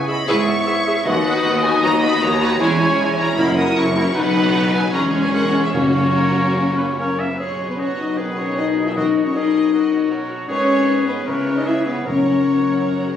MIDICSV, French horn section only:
0, 0, Header, 1, 2, 480
1, 0, Start_track
1, 0, Key_signature, 5, "major"
1, 0, Tempo, 387097
1, 1318, Time_signature, 4, 2, 24, 8
1, 5637, Tempo, 407056
1, 8997, Tempo, 387597
1, 13797, Tempo, 402414
1, 16056, End_track
2, 0, Start_track
2, 0, Title_t, "French horn section"
2, 0, Program_c, 0, 60
2, 0, Note_on_c, 0, 59, 84
2, 0, Note_on_c, 0, 64, 89
2, 316, Note_off_c, 0, 64, 0
2, 320, Note_off_c, 0, 59, 0
2, 331, Note_on_c, 0, 64, 90
2, 335, Note_on_c, 0, 59, 89
2, 1284, Note_off_c, 0, 59, 0
2, 1285, Note_off_c, 0, 64, 0
2, 1296, Note_on_c, 0, 63, 94
2, 1299, Note_on_c, 0, 59, 99
2, 3017, Note_off_c, 0, 59, 0
2, 3017, Note_off_c, 0, 63, 0
2, 3228, Note_on_c, 0, 56, 90
2, 3239, Note_on_c, 0, 64, 96
2, 4175, Note_off_c, 0, 56, 0
2, 4201, Note_on_c, 0, 54, 89
2, 5121, Note_off_c, 0, 64, 0
2, 5126, Note_off_c, 0, 54, 0
2, 5141, Note_on_c, 0, 54, 86
2, 5145, Note_on_c, 0, 63, 96
2, 6047, Note_off_c, 0, 54, 0
2, 6049, Note_off_c, 0, 63, 0
2, 6096, Note_on_c, 0, 61, 96
2, 6097, Note_on_c, 0, 56, 90
2, 7030, Note_off_c, 0, 61, 0
2, 7041, Note_on_c, 0, 58, 75
2, 7049, Note_off_c, 0, 56, 0
2, 7049, Note_on_c, 0, 61, 80
2, 8482, Note_off_c, 0, 58, 0
2, 8486, Note_off_c, 0, 61, 0
2, 8502, Note_on_c, 0, 58, 66
2, 8846, Note_off_c, 0, 58, 0
2, 8861, Note_on_c, 0, 59, 62
2, 8971, Note_on_c, 0, 61, 53
2, 8986, Note_off_c, 0, 59, 0
2, 9342, Note_off_c, 0, 61, 0
2, 9366, Note_on_c, 0, 59, 53
2, 9465, Note_on_c, 0, 61, 62
2, 9486, Note_off_c, 0, 59, 0
2, 9578, Note_off_c, 0, 61, 0
2, 9732, Note_on_c, 0, 63, 64
2, 9967, Note_off_c, 0, 63, 0
2, 9971, Note_on_c, 0, 59, 61
2, 10215, Note_off_c, 0, 59, 0
2, 10224, Note_on_c, 0, 61, 65
2, 10458, Note_off_c, 0, 61, 0
2, 10466, Note_on_c, 0, 63, 69
2, 10817, Note_on_c, 0, 64, 78
2, 10827, Note_off_c, 0, 63, 0
2, 10938, Note_off_c, 0, 64, 0
2, 10940, Note_on_c, 0, 63, 78
2, 11292, Note_on_c, 0, 61, 74
2, 11301, Note_off_c, 0, 63, 0
2, 11401, Note_on_c, 0, 63, 85
2, 11414, Note_off_c, 0, 61, 0
2, 12339, Note_off_c, 0, 63, 0
2, 12827, Note_on_c, 0, 61, 99
2, 13499, Note_off_c, 0, 61, 0
2, 13535, Note_on_c, 0, 59, 75
2, 13788, Note_off_c, 0, 59, 0
2, 13806, Note_on_c, 0, 61, 90
2, 14154, Note_off_c, 0, 61, 0
2, 14154, Note_on_c, 0, 63, 77
2, 14270, Note_off_c, 0, 63, 0
2, 14277, Note_on_c, 0, 64, 88
2, 14496, Note_on_c, 0, 59, 74
2, 14512, Note_off_c, 0, 64, 0
2, 14738, Note_off_c, 0, 59, 0
2, 14745, Note_on_c, 0, 61, 66
2, 16056, Note_off_c, 0, 61, 0
2, 16056, End_track
0, 0, End_of_file